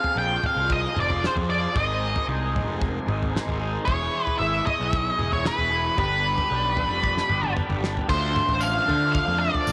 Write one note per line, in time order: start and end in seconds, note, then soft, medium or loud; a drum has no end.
0.00 0.15 F3 medium
0.00 0.16 C4 medium
0.00 0.16 F4 medium
0.00 0.19 G#4 medium
0.00 1.73 G#4 medium
0.00 0.18 F5 medium
0.00 1.73 F5 medium
0.00 3.83 C6 medium
0.04 floor tom medium
0.16 0.36 A#1 medium
0.16 1.20 F3 medium
0.16 0.96 C4 medium
0.16 0.95 F4 medium
0.16 0.94 G#4 medium
0.16 0.42 G5 loud
0.44 0.72 F5 medium
0.44 floor tom medium
0.44 mid tom medium
0.56 0.86 C2 medium
0.70 0.98 D#5 medium
0.70 kick loud
0.70 floor tom medium
0.94 1.26 F1 medium
0.94 1.22 C4 medium
0.94 1.22 F4 medium
0.94 1.24 G#4 medium
0.94 mid tom medium
1.00 1.25 D5 medium
1.10 floor tom medium
1.21 1.73 F3 medium
1.21 1.50 C4 medium
1.21 1.49 F4 loud
1.21 1.48 G#4 medium
1.21 snare medium
1.27 1.33 C5 medium
1.36 1.66 F2 medium
1.36 floor tom medium
1.48 1.74 C4 medium
1.48 1.74 F4 medium
1.48 1.76 G#4 medium
1.48 1.74 D5 medium
1.74 2.16 G#1 loud
1.74 2.26 G#3 medium
1.74 2.27 C4 medium
1.74 2.27 D#4 medium
1.74 2.29 G#4 loud
1.74 3.85 A#4 medium
1.74 2.25 D#5 medium
1.74 3.85 G#5 medium
1.74 kick loud
1.74 floor tom medium
2.16 floor tom medium
2.26 2.68 C2 medium
2.26 3.31 G#3 medium
2.26 3.08 C4 medium
2.26 3.07 D#4 medium
2.26 3.05 G#4 medium
2.56 floor tom medium
2.56 mid tom medium
2.68 2.98 F1 medium
2.81 kick loud
2.81 floor tom medium
3.06 3.37 G#1 medium
3.06 3.32 C4 soft
3.06 3.33 D#4 medium
3.06 3.34 G#4 medium
3.06 mid tom medium
3.23 floor tom medium
3.32 3.84 G#3 medium
3.32 3.61 C4 medium
3.32 3.60 D#4 medium
3.32 3.58 G#4 loud
3.36 snare medium
3.47 3.77 G#1 medium
3.47 floor tom medium
3.59 3.86 C4 medium
3.59 3.86 D#4 medium
3.59 3.85 G#4 medium
3.85 4.07 E1 loud
3.85 4.37 E3 medium
3.85 4.40 B3 medium
3.85 5.96 E4 medium
3.85 4.39 E4 medium
3.85 5.95 G#4 medium
3.85 4.40 G#4 medium
3.85 4.35 C#5 medium
3.85 5.96 C#6 medium
3.85 kick loud
3.85 floor tom medium
4.27 floor tom medium
4.39 4.60 G#1 medium
4.39 5.43 E3 medium
4.39 5.20 B3 medium
4.39 5.19 E4 medium
4.39 5.17 G#4 medium
4.39 4.66 E5 loud
4.66 5.33 D#5 loud
4.66 floor tom medium
4.66 mid tom medium
4.80 5.10 B1 medium
4.93 kick loud
4.93 floor tom medium
5.18 5.49 E1 medium
5.18 5.44 B3 medium
5.18 5.45 E4 medium
5.18 5.46 G#4 medium
5.18 mid tom medium
5.32 5.45 C#5 medium
5.32 floor tom medium
5.44 5.96 E3 medium
5.44 5.71 B3 medium
5.44 5.70 E4 medium
5.44 5.69 G#4 medium
5.44 5.98 B4 medium
5.44 snare medium
5.58 5.88 E1 medium
5.58 floor tom medium
5.70 5.97 B3 medium
5.70 5.96 E4 medium
5.70 5.95 G#4 medium
5.97 6.38 G1 loud
5.97 6.49 G3 medium
5.97 6.50 B3 medium
5.97 6.51 D4 medium
5.97 8.07 G4 medium
5.97 6.52 G4 medium
5.97 7.53 B4 medium
5.97 8.07 D5 medium
5.97 8.07 B5 medium
5.97 kick medium
5.97 floor tom medium
6.38 floor tom medium
6.50 6.90 B1 medium
6.50 7.54 G3 medium
6.50 7.31 B3 medium
6.50 7.29 D4 medium
6.50 7.27 G4 medium
6.77 floor tom medium
6.90 7.20 F1 medium
7.03 kick loud
7.03 high tom medium
7.17 snare soft
7.29 7.60 G1 medium
7.29 7.55 B3 medium
7.29 7.56 D4 medium
7.29 7.57 G4 medium
7.29 mid tom medium
7.43 mid tom medium
7.55 8.07 G3 medium
7.55 7.83 B3 medium
7.55 7.82 D4 medium
7.55 7.80 G4 loud
7.55 mid tom medium
7.69 7.99 G1 medium
7.69 mid tom medium
7.81 8.08 B3 medium
7.81 8.08 D4 medium
7.81 8.07 G4 medium
7.81 snare medium
7.97 floor tom medium
8.08 8.39 D2 medium
8.08 8.86 D3 medium
8.08 8.89 F3 medium
8.08 8.86 A3 loud
8.08 9.72 D4 medium
8.08 8.86 D4 medium
8.08 9.72 C5 medium
8.08 8.64 C5 medium
8.08 9.72 F5 medium
8.08 kick loud
8.08 floor tom medium
8.08 crash medium
8.36 mid tom medium
8.48 8.78 A1 medium
8.48 floor tom medium
8.61 9.11 F5 loud
8.61 tambourine medium
8.87 9.18 D3 medium
8.87 9.72 D3 medium
8.87 9.72 F3 medium
8.87 9.72 A3 medium
8.87 9.72 D4 medium
8.87 floor tom medium
9.12 9.39 F5 loud
9.12 kick loud
9.12 floor tom medium
9.27 9.48 F2 medium
9.39 9.72 D5 medium
9.55 floor tom medium
9.67 9.72 A1 loud
9.67 tambourine loud